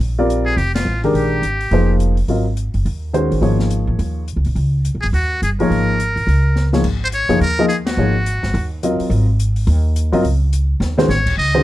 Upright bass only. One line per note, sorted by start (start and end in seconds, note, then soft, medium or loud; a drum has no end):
0.00 0.54 A#1 medium
0.57 0.84 F1 medium
0.85 1.12 A1 medium
1.13 1.40 A#1 medium
1.42 1.69 G#1 medium
1.71 2.25 F1 medium
2.28 2.71 G#1 medium
2.74 2.85 F#1 medium
2.85 3.28 D#2 medium
3.31 3.41 A1 medium
3.41 3.84 G#1 medium
3.87 3.98 A1 medium
3.99 4.34 D#2 medium
4.36 4.45 C#2 medium
4.46 4.55 A#1 medium
4.55 4.91 C#2 medium
4.95 5.03 A#1 medium
5.04 5.12 G1 medium
5.13 5.40 D#2 medium
5.42 5.68 G1 medium
5.70 6.13 G#1 medium
6.16 6.26 A1 medium
6.27 6.81 C#2 medium
6.84 7.26 G#1 medium
7.29 7.40 F#1 medium
7.40 7.94 D#2 medium
7.97 8.40 G#1 medium
8.43 8.53 G1 medium
8.54 8.96 D#2 medium
8.99 muted upright bass stroke soft
9.10 9.64 G#1 medium
9.67 10.09 D#2 loud
10.12 10.23 G1 medium
10.24 10.78 C#2 medium
10.80 11.07 D#2 medium
11.09 11.35 A1 medium
11.37 11.63 C#2 medium